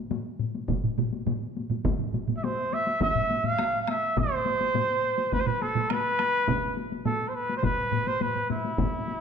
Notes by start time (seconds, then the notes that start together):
0.10 taiko low-mid, taiko high
0.39 taiko low-mid
0.55 taiko high
0.68 taiko, taiko low-mid, taiko mid, taiko high
0.84 taiko low-mid, taiko mid
0.98 taiko low-mid, taiko mid, taiko high
1.13 taiko high
1.26 taiko low-mid, taiko mid, taiko high
1.57 taiko high
1.70 taiko low-mid, taiko mid, taiko high
1.84 taiko, taiko low-mid, taiko mid, taiko high
1.99 taiko low-mid, taiko mid
2.13 taiko low-mid, taiko mid, taiko high
2.28 taiko low-mid, taiko mid, taiko high
2.37 E5
2.44 C5, taiko high
2.73 E5, taiko high
2.87 taiko high
3.01 E5, taiko, taiko high
3.15 taiko low-mid
3.31 taiko high
3.44 F5, taiko low-mid, taiko high
3.59 taiko rim, taiko high
3.82 F5
3.88 E5, taiko rim, taiko high
4.17 C5, taiko, taiko low-mid, taiko high
4.46 taiko high
4.61 taiko high
4.74 taiko low-mid, taiko high
5.18 taiko high
5.32 B4, taiko, taiko high
5.40 C5
5.46 B4, taiko mid
5.62 A4, taiko high
5.75 taiko mid, taiko high
5.90 B4, taiko rim, taiko high
6.19 taiko rim, taiko high
6.47 taiko, taiko mid, taiko high
6.77 taiko high
6.92 taiko high
7.05 A4, taiko mid, taiko high
7.28 C5
7.35 B4
7.49 taiko high
7.57 C5
7.63 B4, taiko, taiko low-mid, taiko high
7.92 taiko low-mid, taiko high
8.07 C5, taiko high
8.21 B4, taiko low-mid, taiko high
8.36 taiko low-mid
8.50 E4, taiko low-mid, taiko high
8.64 taiko high
8.78 taiko, taiko low-mid, taiko high
9.08 taiko high